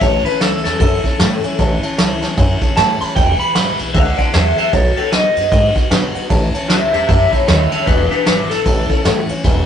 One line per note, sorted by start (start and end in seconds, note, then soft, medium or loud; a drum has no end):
0.01 0.23 A1 loud
0.01 0.25 A2 medium
0.01 0.25 E3 medium
0.01 0.26 A3 medium
0.01 0.25 C#4 loud
0.01 0.23 E4 medium
0.01 0.25 C#5 medium
0.01 0.16 C#5 loud
0.01 0.16 E5 loud
0.01 0.16 A5 loud
0.01 kick loud
0.01 ride medium
0.25 0.40 A3 soft
0.25 0.41 C#4 medium
0.25 0.40 E4 medium
0.25 0.40 B4 loud
0.25 0.35 C#5 medium
0.25 0.35 E5 medium
0.25 0.35 A5 medium
0.25 muted upright bass stroke medium
0.25 ride medium
0.40 0.63 C#2 medium
0.40 0.65 A2 medium
0.40 0.65 E3 medium
0.40 0.65 A3 medium
0.40 0.64 C#4 medium
0.40 0.63 E4 medium
0.40 0.63 A4 loud
0.40 0.55 C#5 medium
0.40 0.55 E5 medium
0.40 0.56 B5 medium
0.40 snare loud
0.40 ride medium
0.64 0.79 E2 medium
0.64 0.79 A3 soft
0.64 0.80 C#4 medium
0.64 0.80 E4 medium
0.64 0.78 A4 medium
0.64 0.74 C#5 medium
0.64 0.74 E5 medium
0.64 0.74 A5 medium
0.64 snare soft
0.64 ride medium
0.79 1.02 F#2 medium
0.79 1.04 E3 medium
0.79 1.04 A3 medium
0.79 1.02 E4 medium
0.79 1.56 A4 loud
0.79 0.95 C#5 loud
0.79 0.95 E5 medium
0.79 0.95 A5 loud
0.79 kick loud
0.79 ride medium
1.03 1.19 A3 soft
1.03 1.19 C#4 soft
1.03 1.19 E4 medium
1.03 1.14 C#5 medium
1.03 1.14 E5 medium
1.03 1.14 A5 medium
1.03 kick medium
1.03 ride medium
1.19 1.43 A2 medium
1.19 1.42 A2 medium
1.19 1.44 E3 medium
1.19 1.44 A3 medium
1.19 1.43 C#4 medium
1.19 1.41 E4 loud
1.19 1.34 C#5 medium
1.19 1.34 E5 medium
1.19 1.34 A5 loud
1.19 snare loud
1.19 ride medium
1.42 1.58 A3 soft
1.42 1.58 C#4 medium
1.42 1.58 E4 medium
1.42 1.53 C#5 loud
1.42 1.53 E5 medium
1.42 1.53 G#5 loud
1.42 muted upright bass stroke medium
1.42 ride medium
1.58 1.81 A1 loud
1.58 1.82 A2 medium
1.58 1.83 E3 medium
1.58 1.83 A3 loud
1.58 1.82 C#4 loud
1.58 1.80 E4 loud
1.58 1.73 C#5 loud
1.58 1.74 E5 loud
1.58 1.74 A5 loud
1.58 kick loud
1.58 ride medium
1.82 1.97 A3 medium
1.82 1.98 C#4 medium
1.82 1.98 E4 medium
1.82 1.92 C#5 medium
1.82 1.92 E5 medium
1.82 1.92 A5 loud
1.82 muted upright bass stroke medium
1.82 ride medium
1.97 2.20 C#2 medium
1.97 2.22 A2 medium
1.97 2.22 E3 medium
1.97 2.22 A3 medium
1.97 2.22 C#4 medium
1.97 2.20 E4 medium
1.97 2.13 C#5 loud
1.97 2.13 E5 medium
1.97 2.13 A5 loud
1.97 snare loud
1.97 ride medium
2.21 2.37 E2 medium
2.21 2.37 A3 medium
2.21 2.38 C#4 medium
2.21 2.37 E4 medium
2.21 2.31 C#5 medium
2.21 2.31 E5 medium
2.21 2.31 A5 loud
2.21 snare soft
2.21 ride medium
2.37 2.59 F#2 medium
2.37 2.61 E3 medium
2.37 2.62 A3 medium
2.37 2.61 C#4 medium
2.37 2.60 E4 medium
2.37 2.52 C#5 loud
2.37 2.52 E5 loud
2.37 2.52 G#5 loud
2.37 kick loud
2.37 ride medium
2.61 2.76 A3 medium
2.61 2.77 C#4 medium
2.61 2.77 E4 medium
2.61 2.71 C#5 medium
2.61 2.71 E5 medium
2.61 2.71 A5 medium
2.61 muted upright bass stroke medium
2.61 kick medium
2.61 ride medium
2.76 3.01 A2 medium
2.76 2.99 A2 loud
2.76 3.01 E3 medium
2.76 3.01 A3 loud
2.76 3.01 C#4 medium
2.76 2.99 E4 medium
2.76 2.91 E5 medium
2.76 3.01 A5 loud
2.76 snare loud
2.76 ride medium
3.00 3.18 A3 soft
3.00 3.17 C#4 soft
3.00 3.16 E4 soft
3.00 3.10 C#5 medium
3.00 3.10 E5 medium
3.00 3.10 A5 medium
3.00 3.15 B5 loud
3.00 muted upright bass stroke medium
3.00 ride medium
3.16 3.38 E1 loud
3.16 3.40 E2 medium
3.16 3.41 E3 medium
3.16 3.41 G#3 medium
3.16 3.40 B3 medium
3.16 3.39 E4 loud
3.16 3.30 B4 loud
3.16 3.31 E5 medium
3.16 3.39 G5 loud
3.16 3.30 G#5 loud
3.16 kick loud
3.16 ride medium
3.39 3.55 E3 soft
3.39 3.55 G#3 medium
3.39 3.56 B3 medium
3.39 3.55 E4 medium
3.39 3.49 B4 medium
3.39 3.49 E5 medium
3.39 3.49 G#5 medium
3.39 3.54 B5 medium
3.39 muted upright bass stroke medium
3.39 ride medium
3.55 3.77 G#1 loud
3.55 3.79 E2 medium
3.55 3.80 B2 medium
3.55 3.80 E3 medium
3.55 3.80 G#3 medium
3.55 3.79 B3 medium
3.55 3.78 E4 medium
3.55 3.70 B4 medium
3.55 3.70 E5 medium
3.55 3.70 G#5 medium
3.55 3.78 B5 loud
3.55 snare loud
3.55 ride loud
3.79 3.93 B1 medium
3.79 3.93 E3 soft
3.79 3.94 G#3 soft
3.79 3.95 B3 medium
3.79 3.95 E4 soft
3.79 3.89 B4 medium
3.79 3.89 E5 medium
3.79 3.89 G#5 medium
3.79 ride medium
3.94 4.17 C#2 medium
3.94 4.18 E3 medium
3.94 4.19 G#3 medium
3.94 4.19 B3 medium
3.94 4.09 B4 loud
3.94 4.17 D5 loud
3.94 4.17 F#5 loud
3.94 4.09 G#5 loud
3.94 kick loud
3.94 ride medium
3.98 4.17 E4 medium
4.18 4.33 E3 soft
4.18 4.34 G#3 medium
4.18 4.34 B3 medium
4.18 4.34 E4 medium
4.18 4.28 B4 medium
4.18 4.33 D5 medium
4.18 4.28 E5 medium
4.18 4.34 F#5 medium
4.18 4.28 G#5 medium
4.18 muted upright bass stroke medium
4.18 kick medium
4.18 ride medium
4.34 4.58 E2 medium
4.34 4.56 E2 medium
4.34 4.58 B2 medium
4.34 4.58 E3 medium
4.34 4.59 G#3 medium
4.34 4.58 B3 loud
4.34 4.56 E4 medium
4.34 4.56 G#4 medium
4.34 4.49 B4 medium
4.34 4.49 E5 medium
4.34 4.58 E5 medium
4.34 4.48 G#5 medium
4.34 snare loud
4.34 ride medium
4.58 4.73 E3 soft
4.58 4.74 G#3 soft
4.58 4.73 B3 medium
4.58 4.73 E4 medium
4.58 4.73 G#4 medium
4.58 4.67 B4 medium
4.58 4.73 E5 loud
4.58 4.67 G#5 medium
4.58 muted upright bass stroke medium
4.58 ride medium
4.73 4.95 B1 loud
4.73 4.97 B2 medium
4.73 4.97 F#3 medium
4.73 4.98 B3 medium
4.73 4.97 D#4 medium
4.73 4.96 F#4 medium
4.73 4.95 A4 medium
4.73 4.88 B4 loud
4.73 4.96 C#5 medium
4.73 4.88 D#5 loud
4.73 4.88 F#5 loud
4.73 kick loud
4.73 ride medium
4.96 5.12 B3 soft
4.96 5.13 D#4 soft
4.96 5.12 F#4 medium
4.96 5.11 A4 medium
4.96 5.06 B4 medium
4.96 5.12 C#5 medium
4.96 5.06 F#5 medium
4.96 muted upright bass stroke medium
4.96 ride medium
5.12 5.34 D#2 medium
5.12 5.36 B2 medium
5.12 5.37 F#3 medium
5.12 5.37 B3 medium
5.12 5.36 D#4 loud
5.12 5.35 F#4 medium
5.12 5.27 B4 medium
5.12 5.88 D#5 loud
5.12 5.27 D#5 medium
5.12 5.27 F#5 medium
5.12 snare loud
5.12 ride medium
5.36 5.50 F#2 medium
5.36 5.51 B3 soft
5.36 5.52 D#4 medium
5.36 5.52 F#4 medium
5.36 5.46 B4 medium
5.36 5.46 F#5 medium
5.36 ride medium
5.51 5.74 G#2 loud
5.51 5.76 F#3 medium
5.51 5.76 B3 medium
5.51 5.76 D#4 medium
5.51 5.74 F#4 medium
5.51 5.66 B4 loud
5.51 5.66 D#5 loud
5.51 5.66 F#5 loud
5.51 kick loud
5.51 ride medium
5.75 5.91 B3 medium
5.75 5.91 D#4 medium
5.75 5.91 F#4 medium
5.75 5.85 B4 medium
5.75 5.85 D#5 medium
5.75 5.85 F#5 loud
5.75 kick medium
5.75 ride medium
5.90 6.15 B2 medium
5.90 6.13 B2 medium
5.90 6.15 F#3 medium
5.90 6.15 B3 loud
5.90 6.15 D#4 loud
5.90 6.13 F#4 medium
5.90 6.05 B4 loud
5.90 6.05 D#5 medium
5.90 6.05 F#5 loud
5.90 snare loud
5.90 ride medium
6.14 6.31 B3 medium
6.14 6.31 D#4 medium
6.14 6.30 F#4 medium
6.14 6.24 B4 medium
6.14 6.24 D#5 medium
6.14 6.24 F#5 loud
6.14 muted upright bass stroke medium
6.14 ride medium
6.29 6.52 A1 loud
6.29 6.54 A2 medium
6.29 6.54 E3 medium
6.29 6.55 A3 medium
6.29 6.55 C#4 medium
6.29 6.53 E4 loud
6.29 6.44 C#5 loud
6.29 6.44 E5 loud
6.29 6.44 A5 loud
6.29 kick loud
6.29 ride medium
6.53 6.70 A3 medium
6.53 6.71 C#4 medium
6.53 6.70 E4 medium
6.53 6.63 C#5 medium
6.53 6.63 E5 medium
6.53 6.63 A5 medium
6.53 muted upright bass stroke medium
6.53 ride medium
6.68 6.91 C#2 medium
6.68 6.94 A2 medium
6.68 6.94 E3 medium
6.68 6.94 A3 medium
6.68 6.94 C#4 medium
6.68 6.92 E4 medium
6.68 6.92 G4 medium
6.68 6.84 C#5 medium
6.68 6.92 E5 loud
6.68 6.84 E5 medium
6.68 6.84 A5 medium
6.68 snare loud
6.68 ride medium
6.93 7.08 E2 medium
6.93 7.08 A3 soft
6.93 7.09 C#4 medium
6.93 7.09 E4 medium
6.93 7.06 G4 medium
6.93 7.03 C#5 medium
6.93 7.07 E5 loud
6.93 7.03 A5 medium
6.93 ride medium
7.08 7.31 F#2 loud
7.08 7.32 E3 medium
7.08 7.33 A3 medium
7.08 7.33 C#4 medium
7.08 7.31 E4 medium
7.08 7.30 G4 medium
7.08 7.23 C#5 medium
7.08 7.32 E5 loud
7.08 7.23 E5 medium
7.08 7.23 A5 loud
7.08 kick loud
7.08 ride medium
7.31 7.49 C#4 medium
7.31 7.46 E4 medium
7.31 7.48 E4 medium
7.31 7.47 C#5 medium
7.31 7.42 C#5 medium
7.31 7.42 E5 medium
7.31 7.42 A5 medium
7.31 muted upright bass stroke medium
7.31 kick medium
7.31 ride medium
7.36 7.48 A3 medium
7.47 7.70 D#2 loud
7.47 7.72 A2 medium
7.47 7.72 E3 medium
7.47 7.72 A3 medium
7.47 7.70 E4 medium
7.47 7.71 E4 medium
7.47 7.71 C#5 medium
7.47 7.62 E5 medium
7.47 7.62 A5 medium
7.47 snare loud
7.47 ride medium
7.72 7.88 A3 soft
7.72 7.88 C#4 medium
7.72 7.86 E4 medium
7.72 7.87 E4 medium
7.72 7.81 C#5 medium
7.72 7.87 C#5 loud
7.72 7.81 E5 medium
7.72 7.81 A5 medium
7.72 muted upright bass stroke medium
7.72 ride medium
7.86 8.09 E1 loud
7.86 8.11 E2 medium
7.86 8.11 B2 loud
7.86 8.12 E3 medium
7.86 8.12 G#3 medium
7.86 8.11 B3 medium
7.86 8.09 D4 medium
7.86 8.09 E4 medium
7.86 8.10 B4 medium
7.86 8.02 B4 loud
7.86 8.02 E5 loud
7.86 8.02 G#5 loud
7.86 kick loud
7.86 ride medium
8.10 8.26 E3 soft
8.10 8.26 G#3 soft
8.10 8.27 B3 medium
8.10 8.24 D4 medium
8.10 8.26 E4 medium
8.10 8.20 B4 medium
8.10 8.25 B4 loud
8.10 8.20 E5 medium
8.10 8.20 G#5 medium
8.10 muted upright bass stroke medium
8.10 ride medium
8.25 8.49 G#1 loud
8.25 8.50 E2 medium
8.25 8.51 B2 medium
8.25 8.51 E3 medium
8.25 8.51 G#3 medium
8.25 8.50 B3 medium
8.25 8.48 D4 medium
8.25 8.49 E4 medium
8.25 8.41 B4 medium
8.25 8.49 B4 loud
8.25 8.41 E5 medium
8.25 8.41 G#5 medium
8.25 snare loud
8.25 ride medium
8.50 8.65 B1 medium
8.50 8.64 E3 soft
8.50 8.66 G#3 medium
8.50 8.66 B3 medium
8.50 8.66 E4 medium
8.50 9.26 A4 loud
8.50 8.60 B4 medium
8.50 8.60 E5 medium
8.50 8.60 G#5 medium
8.50 snare soft
8.50 ride medium
8.65 8.88 A1 medium
8.65 8.90 E3 medium
8.65 8.90 A3 medium
8.65 8.90 C#4 medium
8.65 8.88 E4 medium
8.65 8.80 C#5 loud
8.65 8.80 E5 medium
8.65 8.80 A5 loud
8.65 kick loud
8.65 ride medium
8.89 9.04 A3 soft
8.89 9.05 C#4 medium
8.89 9.05 E4 medium
8.89 8.99 C#5 medium
8.89 8.99 E5 medium
8.89 8.99 A5 medium
8.89 muted upright bass stroke medium
8.89 kick medium
8.89 ride medium
9.04 9.29 A2 medium
9.04 9.27 A2 loud
9.04 9.29 E3 loud
9.04 9.29 A3 loud
9.04 9.29 C#4 loud
9.04 9.27 E4 loud
9.04 9.19 C#5 loud
9.04 9.20 E5 medium
9.04 9.20 F#5 loud
9.04 snare loud
9.04 ride medium
9.28 9.45 A3 medium
9.28 9.45 C#4 medium
9.28 9.44 E4 medium
9.28 9.38 C#5 medium
9.28 9.38 E5 medium
9.28 9.38 G#5 medium
9.28 muted upright bass stroke medium
9.28 ride medium
9.44 9.66 E1 loud
9.44 9.66 E2 medium
9.44 9.66 B2 loud
9.44 9.66 E3 medium
9.44 9.66 G#3 loud
9.44 9.66 B3 loud
9.44 9.66 E4 loud
9.44 9.59 B4 loud
9.44 9.59 E5 loud
9.44 9.59 G#5 loud
9.44 kick loud
9.44 ride medium